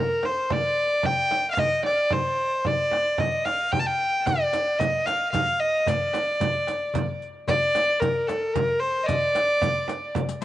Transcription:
Already playing: violin A#4
0.23 violin C5, darbuka tek, frame drum
0.50 violin D5, frame drum, darbuka dum
1.03 violin G5, frame drum, darbuka dum
1.31 darbuka tek, frame drum
1.51 violin F5
1.57 violin D#5, frame drum, darbuka dum
1.83 violin D5, darbuka tek, frame drum
2.10 violin C5, frame drum, darbuka dum
2.65 violin D5, frame drum, darbuka dum
2.92 darbuka tek, frame drum
3.18 violin D#5, frame drum, darbuka dum
3.45 violin F5, darbuka tek, frame drum
3.72 violin G5, frame drum, darbuka dum
3.79 violin A5
3.86 violin G5
4.00 darbuka ka
4.26 violin D5, riq, darbuka dum, frame drum
4.53 riq, darbuka tek, frame drum
4.78 violin D#5, riq, darbuka dum, frame drum
5.06 violin F5, riq, darbuka tek, frame drum
5.32 violin F5, riq, darbuka dum, frame drum
5.60 violin D#5, riq
5.86 violin D5, riq, darbuka dum, frame drum
6.13 riq, darbuka tek, frame drum
6.40 riq, darbuka dum, frame drum
6.67 riq, darbuka tek, frame drum
6.94 riq, darbuka dum, frame drum
7.22 riq
7.48 violin D5, riq, darbuka dum, frame drum
7.75 riq, darbuka tek, frame drum
8.01 violin A#4, riq, frame drum, darbuka dum
8.27 violin A4, riq, darbuka tek, frame drum
8.54 violin A#4, riq, darbuka dum, frame drum
8.80 violin C5, riq
9.03 violin D5 D#5
9.08 riq, frame drum, darbuka dum
9.35 riq, darbuka tek, frame drum
9.61 riq, frame drum, darbuka dum
9.88 riq, darbuka tek, frame drum
10.15 riq, frame drum, darbuka dum
10.29 riq

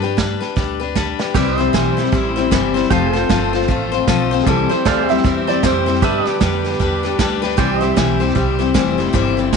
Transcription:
Already playing: upright bass G2, pedal steel guitar G4 B4 D5
0.02 steel-string acoustic guitar D4 G4 B4, snare
0.17 steel-string acoustic guitar G3 D4 G4 B4, kick, snare, hi-hat pedal
0.40 steel-string acoustic guitar D4 G4 B4, snare
0.56 upright bass D2, steel-string acoustic guitar G3 D4 G4 B4, kick, snare
0.80 steel-string acoustic guitar D4 G4 B4
0.95 steel-string acoustic guitar G3 D4 G4 B4, kick, snare, hi-hat pedal
1.19 steel-string acoustic guitar D4 G4 B4, snare
1.34 upright bass C2, steel-string acoustic guitar C3 E3 G3 C4 E4 C5, string section E3 G3 C4 E4, pedal steel guitar G4 B4 D5, kick, snare, crash
1.56 steel-string acoustic guitar E4 C5, pedal steel guitar C5, snare
1.60 steel-string acoustic guitar G3 C4, pedal steel guitar E5
1.73 upright bass B1, steel-string acoustic guitar C3 E3 G3 C4 E4 C5, kick, snare, hi-hat pedal
1.97 steel-string acoustic guitar G3 C4 E4 C5, snare
2.05 snare
2.12 upright bass A1, steel-string acoustic guitar G3 C4 E4 C5, kick, snare
2.36 steel-string acoustic guitar G3 C4 E4 C5, snare
2.51 upright bass G1, steel-string acoustic guitar C3 E3 G3 C4 E4 C5, kick, snare, hi-hat pedal
2.74 steel-string acoustic guitar G3 C4 E4 C5, snare
2.83 snare
2.90 upright bass F1, steel-string acoustic guitar F3 A3 C4 F4 C5, string section F3 A3 F4, pedal steel guitar G4 C5 F5, kick, snare
3.13 steel-string acoustic guitar C4 F4 C5, pedal steel guitar A4, snare
3.29 upright bass G1, steel-string acoustic guitar F3 A3 C4 F4 C5, kick, snare, hi-hat pedal
3.53 steel-string acoustic guitar C4 F4 C5, snare
3.61 snare
3.68 upright bass A1, steel-string acoustic guitar A3 C4 F4 C5, kick, snare
3.92 steel-string acoustic guitar C4 F4 C5, snare
4.08 upright bass B1, steel-string acoustic guitar F3 A3 C4 F4 C5, kick, snare, hi-hat pedal
4.31 steel-string acoustic guitar C4 F4 C5, snare
4.39 upright piano G#4, snare
4.47 upright bass C2, steel-string acoustic guitar C3 E3 G3 C4 E4 C5, string section E3 G3 C4 G4, upright piano A4, kick, snare
4.69 steel-string acoustic guitar G3 C4 E4 C5, upright piano C5, muted upright bass stroke, snare
4.85 upright bass D2, steel-string acoustic guitar C3 E3 G3 C4 E4 C5, pedal steel guitar A4 C5 F5, upright piano D5, kick, snare, hi-hat pedal
5.08 steel-string acoustic guitar G3 C4 E4 C5, pedal steel guitar G4 E5, upright piano E5, snare
5.17 snare
5.24 upright bass E2, steel-string acoustic guitar G3 C4 E4 C5, kick, snare
5.47 steel-string acoustic guitar G3 C4 E4 C5, upright piano D5, snare
5.63 upright bass F2, steel-string acoustic guitar C3 E3 G3 C4 E4 C5, upright piano C5, kick, snare, hi-hat pedal
5.86 steel-string acoustic guitar G3 C4 E4 C5, snare
5.94 snare
6.02 upright bass G2, string section D3 B3, steel-string acoustic guitar G3 D4 G4 B4, pedal steel guitar G4 B4 E5, kick, snare
6.25 steel-string acoustic guitar D4 G4 B4, pedal steel guitar D5, muted upright bass stroke, snare
6.40 upright bass F2, steel-string acoustic guitar G3 D4 G4 B4, kick, snare, hi-hat pedal
6.64 steel-string acoustic guitar D4 G4 B4, snare
6.72 snare
6.79 upright bass E2, steel-string acoustic guitar G3 D4 G4 B4, kick, snare
7.03 steel-string acoustic guitar D4 G4 B4, snare
7.19 upright bass D2, steel-string acoustic guitar G3 D4 G4 B4, kick, snare, hi-hat pedal
7.42 steel-string acoustic guitar D4 G4 B4, snare
7.50 snare
7.57 upright bass C2, steel-string acoustic guitar C3 E3 G3 C4 E4 C5, string section E3 C4, pedal steel guitar G4 C5 D5, kick, snare
7.81 steel-string acoustic guitar G3 C4 E4 C5, snare
7.85 pedal steel guitar E5
7.96 upright bass B1, steel-string acoustic guitar C3 E3 G3 C4 E4 C5, kick, snare, hi-hat pedal
8.20 steel-string acoustic guitar G3 C4 E4 C5, snare
8.28 snare
8.35 upright bass C2, steel-string acoustic guitar G3 C4 E4 C5, kick, snare
8.59 steel-string acoustic guitar G3 C4 E4 C5, snare
8.74 upright bass F1, steel-string acoustic guitar C3 E3 G3 C4 E4 C5, kick, snare, hi-hat pedal
8.98 steel-string acoustic guitar G3 C4 E4 C5, snare
9.06 snare
9.13 upright bass G1, steel-string acoustic guitar C3 E3 G3 C4 E4 C5, kick, snare
9.37 steel-string acoustic guitar G3 C4 E4 C5, snare
9.53 upright bass A1, steel-string acoustic guitar C3 E3 G3, kick, snare, hi-hat pedal

